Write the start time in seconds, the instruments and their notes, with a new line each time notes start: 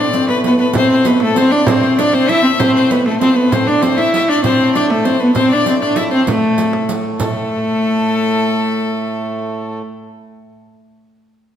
Already playing: harmonium A2, viola da gamba D4, fiddle D5
0.13 viola da gamba C4, riq, frame drum
0.28 viola da gamba B3, fiddle B4, frame drum
0.44 viola da gamba B3, fiddle B4, riq
0.58 viola da gamba B3, fiddle B4, riq
0.73 viola da gamba C4, fiddle C5, riq, frame drum
0.90 fiddle C5, riq, frame drum
1.05 viola da gamba B3, fiddle B4, riq, frame drum
1.20 viola da gamba A3, fiddle A4, frame drum
1.36 viola da gamba C4, fiddle C5, riq
1.51 viola da gamba D4, fiddle D5, riq
1.67 viola da gamba C4, fiddle C5, riq, frame drum
1.83 riq, frame drum
1.97 viola da gamba D4, fiddle D5, riq, frame drum
2.13 viola da gamba C4, fiddle C5, frame drum
2.29 viola da gamba E4, fiddle E5, riq
2.43 viola da gamba C4
2.59 viola da gamba C4, fiddle C5, riq, frame drum
2.75 fiddle C5
2.91 viola da gamba B3, fiddle B4, riq, frame drum
3.05 viola da gamba A3, fiddle A4, frame drum
3.20 viola da gamba C4, fiddle C5, riq, frame drum
3.36 viola da gamba B3, fiddle B4, frame drum
3.52 harmonium A2, viola da gamba C4, fiddle C5, riq, frame drum
3.67 viola da gamba D4, fiddle D5, riq, frame drum
3.82 viola da gamba C4, fiddle C5, riq, frame drum
3.97 viola da gamba E4, fiddle E5, frame drum
4.13 fiddle E5, riq
4.29 viola da gamba D4, fiddle D5, riq
4.44 viola da gamba C4, fiddle C5, riq, frame drum
4.60 riq, frame drum
4.74 viola da gamba D4, fiddle D5, riq, frame drum
4.89 viola da gamba A3, fiddle A4, frame drum
5.04 viola da gamba C4, fiddle C5, riq
5.20 viola da gamba B3, fiddle B4, riq
5.35 viola da gamba C4, fiddle C5, riq, frame drum
5.50 viola da gamba D4, fiddle D5, riq, frame drum
5.66 viola da gamba C4, riq, frame drum
5.80 viola da gamba D4, fiddle D5, frame drum
5.96 viola da gamba E4, fiddle E5, riq
6.11 viola da gamba C4, fiddle C5, riq
6.27 viola da gamba A3, fiddle A4, riq, frame drum
6.43 frame drum
6.58 riq, frame drum
6.73 frame drum
6.89 riq
7.05 frame drum
7.18 harmonium A2, viola da gamba A3, fiddle A4, riq, frame drum